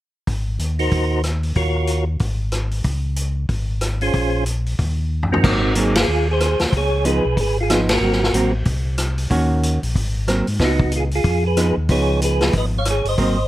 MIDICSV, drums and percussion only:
0, 0, Header, 1, 2, 480
1, 0, Start_track
1, 0, Tempo, 322581
1, 415, Time_signature, 4, 2, 24, 8
1, 20057, End_track
2, 0, Start_track
2, 0, Title_t, "Drums"
2, 404, Note_on_c, 9, 46, 32
2, 406, Note_on_c, 9, 36, 28
2, 553, Note_off_c, 9, 46, 0
2, 555, Note_off_c, 9, 36, 0
2, 884, Note_on_c, 9, 42, 41
2, 1033, Note_off_c, 9, 42, 0
2, 1175, Note_on_c, 9, 46, 30
2, 1324, Note_off_c, 9, 46, 0
2, 1359, Note_on_c, 9, 46, 34
2, 1365, Note_on_c, 9, 36, 28
2, 1508, Note_off_c, 9, 46, 0
2, 1513, Note_off_c, 9, 36, 0
2, 1838, Note_on_c, 9, 42, 43
2, 1842, Note_on_c, 9, 37, 50
2, 1987, Note_off_c, 9, 42, 0
2, 1991, Note_off_c, 9, 37, 0
2, 2130, Note_on_c, 9, 46, 30
2, 2279, Note_off_c, 9, 46, 0
2, 2311, Note_on_c, 9, 46, 36
2, 2321, Note_on_c, 9, 36, 26
2, 2460, Note_off_c, 9, 46, 0
2, 2470, Note_off_c, 9, 36, 0
2, 2787, Note_on_c, 9, 42, 44
2, 2936, Note_off_c, 9, 42, 0
2, 3266, Note_on_c, 9, 46, 38
2, 3278, Note_on_c, 9, 36, 28
2, 3415, Note_off_c, 9, 46, 0
2, 3427, Note_off_c, 9, 36, 0
2, 3746, Note_on_c, 9, 42, 44
2, 3751, Note_on_c, 9, 37, 53
2, 3895, Note_off_c, 9, 42, 0
2, 3899, Note_off_c, 9, 37, 0
2, 4038, Note_on_c, 9, 46, 32
2, 4187, Note_off_c, 9, 46, 0
2, 4227, Note_on_c, 9, 46, 38
2, 4233, Note_on_c, 9, 36, 30
2, 4375, Note_off_c, 9, 46, 0
2, 4382, Note_off_c, 9, 36, 0
2, 4707, Note_on_c, 9, 42, 45
2, 4855, Note_off_c, 9, 42, 0
2, 5190, Note_on_c, 9, 46, 35
2, 5192, Note_on_c, 9, 36, 31
2, 5339, Note_off_c, 9, 46, 0
2, 5341, Note_off_c, 9, 36, 0
2, 5668, Note_on_c, 9, 42, 42
2, 5673, Note_on_c, 9, 37, 52
2, 5817, Note_off_c, 9, 42, 0
2, 5822, Note_off_c, 9, 37, 0
2, 5965, Note_on_c, 9, 46, 32
2, 6114, Note_off_c, 9, 46, 0
2, 6152, Note_on_c, 9, 46, 36
2, 6157, Note_on_c, 9, 36, 28
2, 6300, Note_off_c, 9, 46, 0
2, 6306, Note_off_c, 9, 36, 0
2, 6634, Note_on_c, 9, 42, 47
2, 6783, Note_off_c, 9, 42, 0
2, 6940, Note_on_c, 9, 46, 30
2, 7089, Note_off_c, 9, 46, 0
2, 7125, Note_on_c, 9, 46, 37
2, 7126, Note_on_c, 9, 36, 30
2, 7274, Note_off_c, 9, 36, 0
2, 7274, Note_off_c, 9, 46, 0
2, 7779, Note_on_c, 9, 43, 45
2, 7928, Note_off_c, 9, 43, 0
2, 7940, Note_on_c, 9, 43, 66
2, 8089, Note_off_c, 9, 43, 0
2, 8092, Note_on_c, 9, 36, 65
2, 8098, Note_on_c, 9, 49, 65
2, 8241, Note_off_c, 9, 36, 0
2, 8246, Note_off_c, 9, 49, 0
2, 8560, Note_on_c, 9, 42, 56
2, 8709, Note_off_c, 9, 42, 0
2, 8861, Note_on_c, 9, 51, 64
2, 8865, Note_on_c, 9, 38, 74
2, 9010, Note_off_c, 9, 51, 0
2, 9014, Note_off_c, 9, 38, 0
2, 9529, Note_on_c, 9, 42, 54
2, 9534, Note_on_c, 9, 37, 62
2, 9678, Note_off_c, 9, 42, 0
2, 9683, Note_off_c, 9, 37, 0
2, 9814, Note_on_c, 9, 46, 41
2, 9818, Note_on_c, 9, 38, 51
2, 9962, Note_off_c, 9, 46, 0
2, 9967, Note_off_c, 9, 38, 0
2, 10009, Note_on_c, 9, 36, 29
2, 10010, Note_on_c, 9, 46, 40
2, 10158, Note_off_c, 9, 36, 0
2, 10159, Note_off_c, 9, 46, 0
2, 10488, Note_on_c, 9, 42, 49
2, 10637, Note_off_c, 9, 42, 0
2, 10967, Note_on_c, 9, 36, 31
2, 10970, Note_on_c, 9, 46, 44
2, 11116, Note_off_c, 9, 36, 0
2, 11119, Note_off_c, 9, 46, 0
2, 11454, Note_on_c, 9, 42, 54
2, 11459, Note_on_c, 9, 37, 62
2, 11459, Note_on_c, 9, 38, 35
2, 11603, Note_off_c, 9, 42, 0
2, 11607, Note_off_c, 9, 37, 0
2, 11607, Note_off_c, 9, 38, 0
2, 11741, Note_on_c, 9, 51, 65
2, 11745, Note_on_c, 9, 38, 74
2, 11890, Note_off_c, 9, 51, 0
2, 11894, Note_off_c, 9, 38, 0
2, 12087, Note_on_c, 9, 38, 27
2, 12236, Note_off_c, 9, 38, 0
2, 12254, Note_on_c, 9, 38, 45
2, 12402, Note_off_c, 9, 38, 0
2, 12410, Note_on_c, 9, 42, 54
2, 12559, Note_off_c, 9, 42, 0
2, 12876, Note_on_c, 9, 46, 44
2, 12884, Note_on_c, 9, 36, 34
2, 13025, Note_off_c, 9, 46, 0
2, 13033, Note_off_c, 9, 36, 0
2, 13358, Note_on_c, 9, 42, 54
2, 13362, Note_on_c, 9, 37, 63
2, 13506, Note_off_c, 9, 42, 0
2, 13511, Note_off_c, 9, 37, 0
2, 13657, Note_on_c, 9, 46, 39
2, 13806, Note_off_c, 9, 46, 0
2, 13845, Note_on_c, 9, 46, 46
2, 13848, Note_on_c, 9, 36, 30
2, 13994, Note_off_c, 9, 46, 0
2, 13997, Note_off_c, 9, 36, 0
2, 14334, Note_on_c, 9, 42, 53
2, 14483, Note_off_c, 9, 42, 0
2, 14627, Note_on_c, 9, 46, 37
2, 14776, Note_off_c, 9, 46, 0
2, 14813, Note_on_c, 9, 36, 31
2, 14820, Note_on_c, 9, 46, 44
2, 14962, Note_off_c, 9, 36, 0
2, 14969, Note_off_c, 9, 46, 0
2, 15293, Note_on_c, 9, 42, 49
2, 15298, Note_on_c, 9, 37, 56
2, 15442, Note_off_c, 9, 42, 0
2, 15446, Note_off_c, 9, 37, 0
2, 15581, Note_on_c, 9, 46, 39
2, 15730, Note_off_c, 9, 46, 0
2, 15765, Note_on_c, 9, 46, 43
2, 15768, Note_on_c, 9, 36, 29
2, 15770, Note_on_c, 9, 38, 35
2, 15914, Note_off_c, 9, 46, 0
2, 15917, Note_off_c, 9, 36, 0
2, 15919, Note_off_c, 9, 38, 0
2, 16063, Note_on_c, 9, 36, 52
2, 16212, Note_off_c, 9, 36, 0
2, 16243, Note_on_c, 9, 42, 53
2, 16392, Note_off_c, 9, 42, 0
2, 16537, Note_on_c, 9, 46, 40
2, 16686, Note_off_c, 9, 46, 0
2, 16727, Note_on_c, 9, 46, 44
2, 16729, Note_on_c, 9, 36, 31
2, 16876, Note_off_c, 9, 46, 0
2, 16878, Note_off_c, 9, 36, 0
2, 17212, Note_on_c, 9, 42, 51
2, 17217, Note_on_c, 9, 37, 55
2, 17361, Note_off_c, 9, 42, 0
2, 17366, Note_off_c, 9, 37, 0
2, 17688, Note_on_c, 9, 46, 47
2, 17694, Note_on_c, 9, 36, 33
2, 17837, Note_off_c, 9, 46, 0
2, 17843, Note_off_c, 9, 36, 0
2, 18179, Note_on_c, 9, 42, 53
2, 18327, Note_off_c, 9, 42, 0
2, 18460, Note_on_c, 9, 46, 39
2, 18465, Note_on_c, 9, 38, 56
2, 18609, Note_off_c, 9, 46, 0
2, 18614, Note_off_c, 9, 38, 0
2, 18644, Note_on_c, 9, 46, 44
2, 18653, Note_on_c, 9, 36, 35
2, 18793, Note_off_c, 9, 46, 0
2, 18802, Note_off_c, 9, 36, 0
2, 19125, Note_on_c, 9, 42, 49
2, 19129, Note_on_c, 9, 37, 57
2, 19273, Note_off_c, 9, 42, 0
2, 19278, Note_off_c, 9, 37, 0
2, 19424, Note_on_c, 9, 46, 43
2, 19573, Note_off_c, 9, 46, 0
2, 19609, Note_on_c, 9, 46, 43
2, 19611, Note_on_c, 9, 36, 33
2, 19758, Note_off_c, 9, 46, 0
2, 19760, Note_off_c, 9, 36, 0
2, 20057, End_track
0, 0, End_of_file